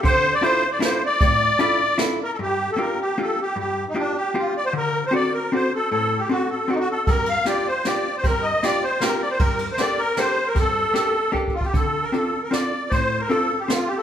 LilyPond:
<<
  \new Staff \with { instrumentName = "Accordion" } { \time 3/4 \key d \minor \tempo 4 = 154 c''8. d''16 c''8. d''16 c''8 d''8~ | d''2 r8 bes'16 a'16 | \key g \minor g'8. a'16 bes'8 g'8 a'8 g'8 | g'8. ees'16 d'8 g'8 f'8 d''16 c''16 |
bes'8. c''16 d''8 bes'8 c''8 a'8 | a'8. g'16 fis'8 a'8 fis'32 ees'32 fis'16 a'8 | bes'8 f''8 d''8 c''8 d''8. c''16 | bes'8 ees''8 d''8 c''8 bes'8 d''16 c''16 |
bes'8. c''16 d''8 bes'8 c''8. bes'16 | a'2 r8 f'16 g'16 | \key d \minor a'8. bes'16 a'8. bes'16 d''4 | c''8. bes'16 a'8. g'16 f'8 g'16 a'16 | }
  \new Staff \with { instrumentName = "Hollow-body jazz guitar" } { \time 3/4 \key d \minor d4 <d' e' f' a'>8 r8 <d' e' f' a'>8 r8 | a,4 <d' e' f' a'>8 r8 <d' e' f' a'>8 r8 | \key g \minor g,4 <bes d' f' g'>8 r8 <bes d' f' g'>8 r8 | g,4 <bes d' f' g'>8 r8 <bes d' f' g'>8 r8 |
d4 <c' d' fis' a'>8 r8 <c' d' fis' a'>8 r8 | a,4 <c' d' fis' a'>8 r8 <c' d' fis' a'>8 r8 | g,4 <bes d' f' g'>8 r8 <bes d' f' g'>8 r8 | g,4 <bes d' f' g'>8 r8 <bes d' f' g'>8 r8 |
g,4 <bes d' g' a'>8 r8 <bes d' g' a'>8 r8 | g,4 <bes d' g' a'>8 r8 <bes d' g' a'>8 r8 | \key d \minor d4 <c' d' f' a'>8 r8 <c' d' f' a'>8 r8 | a,4 <c' d' f' a'>8 r8 <c' d' f' a'>8 r8 | }
  \new DrumStaff \with { instrumentName = "Drums" } \drummode { \time 3/4 <hh bd>4 hh4 <hh sn>4 | <hh bd>4 hh4 <hh sn>4 | r4 r4 r4 | r4 r4 r4 |
r4 r4 r4 | r4 r4 r4 | <bd cymr>8 cymr8 <cymr sn>4 <cymr sn>4 | <bd cymr>4 <cymr sn>4 <cymr sn>4 |
<bd cymr>8 cymr8 <cymr sn>4 <cymr sn>4 | <bd cymr>4 <cymr sn>4 \tuplet 3/2 { bd8 bd8 bd8 } | <hh bd>4 hh4 <hh sn>4 | <hh bd>4 hh4 <hh sn>4 | }
>>